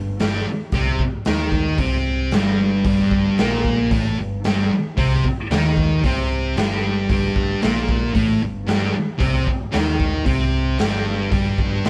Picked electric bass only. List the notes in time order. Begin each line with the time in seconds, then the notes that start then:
Already playing: G1
0.22 G1
0.72 C2
1.27 D#2
1.79 C2
2.33 G1
2.85 G1
3.40 A#1
3.91 A1
4.19 G1
4.46 G1
4.72 muted picked electric bass stroke
4.98 C2
5.50 D#2
6.04 C2
6.57 G1
7.10 G1
7.63 A#1
8.15 A1
8.43 G1
8.68 G1
8.95 muted picked electric bass stroke
9.20 C2
9.75 D#2
10.27 C2
10.80 G1
11.32 G1
11.86 A#1